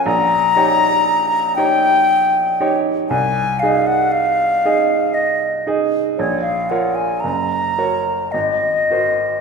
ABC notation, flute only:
X:1
M:3/4
L:1/16
Q:1/4=58
K:Abmix
V:1 name="Flute"
b6 =g4- g z | a2 f g f4 e2 z2 | d f g a b4 e4 |]